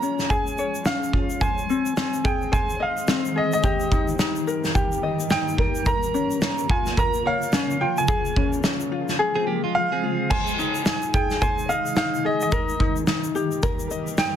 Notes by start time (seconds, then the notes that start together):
Already playing: F3 G#3 C#4 F4 G#4 C#5 A#5
0.02 C#4, shaker
0.19 snare, shaker
0.30 G#4 G#5, kick, shaker
0.47 shaker
0.58 C#5, shaker
0.75 shaker
0.85 C#4 F5, snare, shaker
1.03 shaker
1.13 F4, kick
1.30 shaker
1.40 D#3 G#3 C4 G#4 C5 G#5, kick, shaker
1.58 shaker
1.70 C4, shaker
1.86 shaker
1.97 C4, snare, shaker
2.14 shaker
2.24 G#4 G5, kick, shaker
2.42 shaker
2.52 C5 G#5, kick, shaker
2.69 shaker
2.80 D#5 F5
2.97 shaker
3.08 C4, snare, shaker
3.25 shaker
3.36 G#4 D#5
3.52 D#5, shaker
3.63 G2 G3 A#3 G4 A#4, kick, shaker
3.80 shaker
3.92 D#4, kick, shaker
4.08 shaker
4.19 D#4, snare, shaker
4.36 shaker
4.47 A#4, shaker
4.64 snare, shaker
4.75 G4, kick, shaker
4.92 shaker
5.03 D#5
5.20 shaker
5.30 D#4 G5, snare, shaker
5.48 shaker
5.58 A#4, kick
5.75 shaker
5.86 C#3 F3 A#3 F4 A#4 A#5, kick, shaker
6.03 shaker
6.14 C#4, shaker
6.31 shaker
6.42 C#4, snare, shaker
6.58 shaker
6.70 F4 G#5, kick
6.86 snare, shaker
6.97 A#4 A#5, kick, shaker
7.14 shaker
7.26 C#5 F5
7.42 shaker
7.52 C#4, snare, shaker
7.70 shaker
7.81 F4 G5
7.97 G#5, shaker
8.08 G#3 G#4, kick, shaker
8.25 shaker
8.36 C#4, kick
8.53 shaker
8.64 C#4, snare, shaker
8.80 shaker
8.92 F4
9.09 snare, shaker
9.19 G#4
9.36 C4 G#4
9.47 A#3 G4
9.64 G#3 F4
9.75 F5
9.92 C4 G#4
10.03 F4
10.30 C3 D#3 G#3 D#4 G#4 C5 G#5, kick, crash
10.47 shaker
10.59 D#4, shaker
10.75 shaker
10.86 D#4, snare, shaker
11.02 shaker
11.14 G#4 G5, kick, shaker
11.30 snare, shaker
11.42 C5 G#5, kick, shaker
11.58 shaker
11.69 D#5 F5, shaker
11.86 shaker
11.96 D#4 F5, snare, shaker
12.14 shaker
12.25 G#4 D#5
12.41 D#5, shaker
12.52 G2 G3 A#3 G4 A#4, kick, shaker
12.69 shaker
12.80 D#4, kick
12.96 shaker
13.07 D#4, snare, shaker
13.24 shaker
13.35 G4, shaker
13.51 shaker
13.63 A#4, kick, shaker
13.79 shaker
13.91 D#5, shaker
14.07 shaker
14.18 D#4 G5, snare, shaker